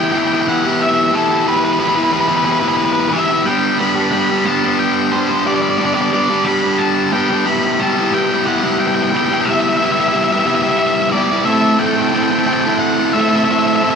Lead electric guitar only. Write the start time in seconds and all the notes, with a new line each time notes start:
0.04 G5
0.12 G5
0.18 G5
0.27 G5
0.34 G5
0.42 G5
0.49 F#5
0.82 E5
1.15 A4
1.48 B4
1.57 B4
1.65 B4
1.73 B4
1.80 B4
1.88 B4
1.96 B4
2.04 B4
2.13 B4
2.20 B4
2.28 B4
2.36 B4
2.45 B4
2.52 B4
2.60 B4
2.68 B4
2.77 B4
2.85 B4
2.93 B4
3.00 B4
3.09 B4 E5
3.46 G5
3.78 B5
4.12 B5
4.46 A5
4.79 G5
5.12 C5
5.47 D5
5.55 D5
5.62 D5
5.70 D5
5.78 D5
5.85 D5
5.94 D5
6.02 D5
6.13 D5
6.45 B5
6.78 A5
7.13 G5
7.46 B5
7.80 A5
8.14 G5
8.47 F#5
8.79 G5
8.87 G5
8.95 G5
9.03 G5
9.10 G5
9.17 G5
9.25 G5
9.34 G5
9.41 E5 G5
9.53 E5
9.61 E5
9.69 E5
9.77 E5
9.86 E5
9.92 E5
10.00 E5
10.08 E5
10.17 E5
10.24 E5
10.32 E5
10.39 E5
10.47 E5
10.55 E5
10.62 E5
10.71 E5
10.79 E5
10.87 E5
10.95 E5
11.02 E5
11.10 D5 E5
11.45 E5
11.79 G5
11.86 G5
11.93 G5
12.02 G5
12.09 G5
12.16 G5
12.24 G5
12.31 G5
12.39 G5
12.47 G5
12.53 G5
12.61 G5
12.69 G5
12.79 F#5
13.13 E5
13.21 E5
13.29 E5
13.36 E5
13.44 E5
13.52 E5
13.59 E5
13.67 E5
13.76 E5
13.84 E5
13.90 E5